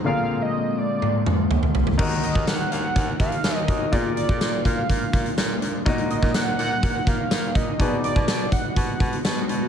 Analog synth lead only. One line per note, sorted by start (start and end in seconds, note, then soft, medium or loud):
0.05 0.43 F5 loud
0.42 0.80 D#5 loud
0.78 1.26 D5 medium
2.23 2.49 D#5 loud
2.47 2.71 F#5 loud
2.71 3.17 F#5 loud
3.20 3.57 F5 loud
3.57 3.68 D#5 loud
3.68 3.92 D#5 loud
3.93 4.15 D5 medium
4.16 4.61 D5 loud
4.65 4.87 F5 loud
4.89 5.34 F5 medium
6.11 6.36 D#5 loud
6.35 6.59 F#5 loud
6.59 7.09 F#5 loud
7.08 7.57 F5 loud
7.56 7.82 D#5 medium
7.80 8.04 D5 loud
8.04 8.49 D5 medium
8.52 8.75 F#5 loud
8.77 9.21 F#5 medium